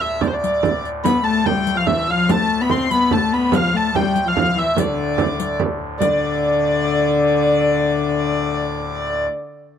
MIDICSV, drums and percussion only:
0, 0, Header, 1, 3, 480
1, 0, Start_track
1, 0, Tempo, 412371
1, 1223, Time_signature, 3, 2, 24, 8
1, 11390, End_track
2, 0, Start_track
2, 0, Title_t, "Frame drum"
2, 11, Note_on_c, 9, 64, 34
2, 128, Note_off_c, 9, 64, 0
2, 246, Note_on_c, 9, 64, 104
2, 362, Note_off_c, 9, 64, 0
2, 491, Note_on_c, 9, 64, 32
2, 607, Note_off_c, 9, 64, 0
2, 733, Note_on_c, 9, 64, 114
2, 849, Note_off_c, 9, 64, 0
2, 985, Note_on_c, 9, 64, 30
2, 1101, Note_off_c, 9, 64, 0
2, 1219, Note_on_c, 9, 64, 93
2, 1336, Note_off_c, 9, 64, 0
2, 1461, Note_on_c, 9, 64, 28
2, 1577, Note_off_c, 9, 64, 0
2, 1699, Note_on_c, 9, 64, 96
2, 1815, Note_off_c, 9, 64, 0
2, 1945, Note_on_c, 9, 64, 29
2, 2061, Note_off_c, 9, 64, 0
2, 2175, Note_on_c, 9, 64, 98
2, 2292, Note_off_c, 9, 64, 0
2, 2422, Note_on_c, 9, 64, 26
2, 2538, Note_off_c, 9, 64, 0
2, 2668, Note_on_c, 9, 64, 95
2, 2785, Note_off_c, 9, 64, 0
2, 2905, Note_on_c, 9, 64, 30
2, 3021, Note_off_c, 9, 64, 0
2, 3136, Note_on_c, 9, 64, 96
2, 3253, Note_off_c, 9, 64, 0
2, 3387, Note_on_c, 9, 64, 32
2, 3504, Note_off_c, 9, 64, 0
2, 3619, Note_on_c, 9, 64, 105
2, 3736, Note_off_c, 9, 64, 0
2, 3860, Note_on_c, 9, 64, 31
2, 3977, Note_off_c, 9, 64, 0
2, 4096, Note_on_c, 9, 64, 120
2, 4213, Note_off_c, 9, 64, 0
2, 4345, Note_on_c, 9, 64, 35
2, 4461, Note_off_c, 9, 64, 0
2, 4600, Note_on_c, 9, 64, 109
2, 4716, Note_off_c, 9, 64, 0
2, 4846, Note_on_c, 9, 64, 35
2, 4962, Note_off_c, 9, 64, 0
2, 5080, Note_on_c, 9, 64, 112
2, 5197, Note_off_c, 9, 64, 0
2, 5317, Note_on_c, 9, 64, 33
2, 5434, Note_off_c, 9, 64, 0
2, 5546, Note_on_c, 9, 64, 103
2, 5663, Note_off_c, 9, 64, 0
2, 5796, Note_on_c, 9, 64, 30
2, 5912, Note_off_c, 9, 64, 0
2, 6030, Note_on_c, 9, 64, 106
2, 6146, Note_off_c, 9, 64, 0
2, 6514, Note_on_c, 9, 64, 98
2, 6630, Note_off_c, 9, 64, 0
2, 6745, Note_on_c, 9, 64, 26
2, 6861, Note_off_c, 9, 64, 0
2, 6988, Note_on_c, 9, 64, 86
2, 7105, Note_off_c, 9, 64, 0
2, 11390, End_track
3, 0, Start_track
3, 0, Title_t, "Riq"
3, 273, Note_on_c, 9, 54, 21
3, 390, Note_off_c, 9, 54, 0
3, 510, Note_on_c, 9, 54, 54
3, 626, Note_off_c, 9, 54, 0
3, 759, Note_on_c, 9, 54, 22
3, 875, Note_off_c, 9, 54, 0
3, 992, Note_on_c, 9, 54, 21
3, 1109, Note_off_c, 9, 54, 0
3, 1227, Note_on_c, 9, 54, 72
3, 1344, Note_off_c, 9, 54, 0
3, 1702, Note_on_c, 9, 54, 20
3, 1818, Note_off_c, 9, 54, 0
3, 1940, Note_on_c, 9, 54, 50
3, 2057, Note_off_c, 9, 54, 0
3, 2669, Note_on_c, 9, 54, 69
3, 2786, Note_off_c, 9, 54, 0
3, 3149, Note_on_c, 9, 54, 19
3, 3266, Note_off_c, 9, 54, 0
3, 3388, Note_on_c, 9, 54, 54
3, 3504, Note_off_c, 9, 54, 0
3, 4112, Note_on_c, 9, 54, 69
3, 4228, Note_off_c, 9, 54, 0
3, 4598, Note_on_c, 9, 54, 22
3, 4714, Note_off_c, 9, 54, 0
3, 4838, Note_on_c, 9, 54, 51
3, 4955, Note_off_c, 9, 54, 0
3, 5562, Note_on_c, 9, 54, 72
3, 5679, Note_off_c, 9, 54, 0
3, 6042, Note_on_c, 9, 54, 21
3, 6158, Note_off_c, 9, 54, 0
3, 6282, Note_on_c, 9, 54, 59
3, 6398, Note_off_c, 9, 54, 0
3, 7002, Note_on_c, 9, 54, 84
3, 7119, Note_off_c, 9, 54, 0
3, 11390, End_track
0, 0, End_of_file